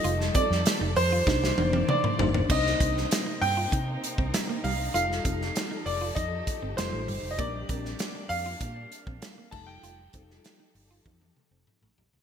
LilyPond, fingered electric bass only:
\new Staff \with { instrumentName = "Fingered electric bass" } { \clef bass \time 4/4 \key c \dorian \tempo 4 = 98 f,,8 r16 f,16 r16 f,,16 f,8 c,8 f,,8 r8 g,,8 | c,8 c,8 r8 g,8 c8 r16 c,16 r8 c,8 | f,,8 f,,8 r8 f,,8 f,8 r16 g,,16 f,,16 a,,16 g,,16 f,,16 | bes,,8 bes,,8 r8 f,8 bes,8 r16 bes,,16 r8 f,,8 |
f,,8 f,,8 r8 g,,8 f,8 r16 f,,16 r16 a,,16 bes,,16 c,16 | }